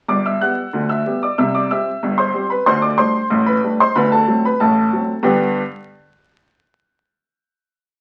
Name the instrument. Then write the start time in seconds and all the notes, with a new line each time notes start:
upright piano
0.09 G1 G2 D5 D6
0.26 E5 E6
0.41 G3 B3 G4 F#5 F#6
0.73 D2 D3
0.89 E5 E6
1.06 G3 B3 G4
1.23 D5 D6
1.38 C2 C3 E5 E6
1.55 D5 D6
1.71 G3 C4 G4 E5 E6
2.03 G1 G2
2.18 C5 C6
2.34 G3 C4 G4
2.50 B4 B5
2.66 D2 D3 C5 C6
2.82 D5 D6
2.98 G3 A3 D4 C5 C6
3.30 A1 A2
3.46 B4 B5
3.64 G3 A3 D4
3.80 C5 C6
3.95 D2 D3 B4 B5
4.12 A4 A5
4.27 F#3 A3 C4
4.45 B4 B5
4.60 A1 A2 A4 A5
4.93 F#3 A3 C4
5.23 G2 D3 B3 D4 G4 B4 G5